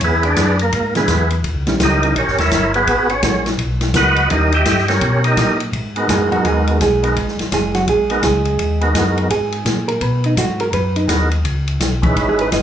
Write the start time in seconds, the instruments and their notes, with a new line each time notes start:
0.00 tonewheel organ E2 B3 G#4 B4, kick, ride
0.04 tonewheel organ E4
0.23 tonewheel organ D4 G#4 B4 D5, ride
0.36 tonewheel organ F#2, kick, snare, hi-hat pedal, ride
0.59 tonewheel organ A#3 A#4, ride
0.72 tonewheel organ G#2, kick, ride
0.95 hollow-body jazz guitar E3 B3 D4 G#4, tonewheel organ B3 E4 G#4 B4, snare, ride
1.08 tonewheel organ E2, kick, snare, hi-hat pedal, ride
1.30 ride
1.44 tonewheel organ D#2, kick, ride
1.55 tonewheel organ C#2
1.67 tonewheel organ A#1, hollow-body jazz guitar D#3 G3 C#4 E4, snare, ride
1.80 tonewheel organ C#2 D#4 G4 A#4 D#5, kick, snare, hi-hat pedal, ride
2.03 hollow-body jazz guitar D#3 G3 C#4 E4, ride
2.15 tonewheel organ A#1 C#4 G4 A#4 C#5, kick, ride
2.27 tonewheel organ G1, snare
2.38 tonewheel organ D#2 E4 A#4 C#5 E5, snare, ride
2.51 tonewheel organ G1, kick, snare, hi-hat pedal, ride
2.74 tonewheel organ B3 F#4 G#4 B4, ride
2.87 tonewheel organ G#1, kick, ride
3.09 tonewheel organ C#4 C#5, ride
3.22 tonewheel organ A#1, hollow-body jazz guitar G#3 B3 F#4 A#4, kick, snare, hi-hat pedal, ride
3.46 snare, ride
3.58 tonewheel organ B1, kick, ride
3.81 snare, ride
3.94 tonewheel organ C#2 F#4 B4 D#5 F#5, hollow-body jazz guitar G#3 B3 F#4 A#4, kick, snare, hi-hat pedal, ride
4.16 ride
4.30 tonewheel organ D#2 D#4 G4 A#4 D#5, hollow-body jazz guitar D#3 G3 C#4 E4, kick, ride
4.52 tonewheel organ G4 D#5 E5 G5, ride
4.65 tonewheel organ G2, kick, snare, hi-hat pedal, ride
4.78 snare
4.88 tonewheel organ C#4 G4 A#4 C#5, snare, ride
5.01 tonewheel organ B2, kick, ride
5.24 tonewheel organ D#4 G4 A#4 D#5, ride
5.37 tonewheel organ A#2, kick, snare, hi-hat pedal, ride
5.60 ride
5.73 tonewheel organ G#2, kick, ride
5.96 tonewheel organ G#3 B3 D#4 F#4 A#4, ride
6.09 tonewheel organ F#2, hollow-body jazz guitar G#3 G#4, kick, snare, hi-hat pedal, ride
6.31 tonewheel organ F#2 G#3 B3 D#4 F#4 A#4, hollow-body jazz guitar F#3 F#4, ride
6.45 tonewheel organ D#2, hollow-body jazz guitar G#3 G#4, kick, ride
6.67 ride
6.80 tonewheel organ B1, hollow-body jazz guitar G#3 G#4, kick, snare, hi-hat pedal, ride
7.02 tonewheel organ G#3 B3 D#4 F#4 A#4, ride
7.16 tonewheel organ G#1, kick, ride
7.28 snare
7.38 tonewheel organ G#1, snare, ride
7.52 tonewheel organ F#1, hollow-body jazz guitar G#3 G#4, kick, snare, hi-hat pedal, ride
7.74 hollow-body jazz guitar F#3 F#4, snare, ride
7.87 tonewheel organ A#1, hollow-body jazz guitar G#3 G#4, kick, ride
8.10 tonewheel organ G#3 B3 D#4 F#4 A#4, ride
8.23 tonewheel organ C#2, hollow-body jazz guitar G#3 G#4, kick, snare, hi-hat pedal, ride
8.45 ride
8.59 tonewheel organ D#2, kick, ride
8.81 tonewheel organ G#3 B3 D#4 F#4 A#4, ride
8.94 tonewheel organ F#2, kick, snare, hi-hat pedal, ride
9.18 ride
9.30 tonewheel organ G#2, hollow-body jazz guitar G#4, kick, ride
9.52 ride
9.65 tonewheel organ A#2, kick, snare, hi-hat pedal, ride
9.88 hollow-body jazz guitar A#4, ride
10.01 tonewheel organ B2, hollow-body jazz guitar B4, kick, ride
10.24 hollow-body jazz guitar D#4, ride
10.37 tonewheel organ G#2, hollow-body jazz guitar F#4, kick, snare, hi-hat pedal, ride
10.60 hollow-body jazz guitar A#4, ride
10.73 tonewheel organ F#2, hollow-body jazz guitar B4, kick, ride
10.96 hollow-body jazz guitar D#4, ride
11.07 tonewheel organ D#2 G#3 B3 D#4 F#4 A#4, kick, snare, hi-hat pedal, ride
11.31 ride
11.44 tonewheel organ C#2, kick, ride
11.68 ride
11.80 tonewheel organ B1, kick, snare, hi-hat pedal, ride
12.02 tonewheel organ G#3 C#4 D#4 E4 B4, kick, ride
12.15 tonewheel organ G#1, kick, ride
12.29 hollow-body jazz guitar G#4
12.39 hollow-body jazz guitar B4, ride
12.52 tonewheel organ F#1, hollow-body jazz guitar D#5, kick, snare, hi-hat pedal, ride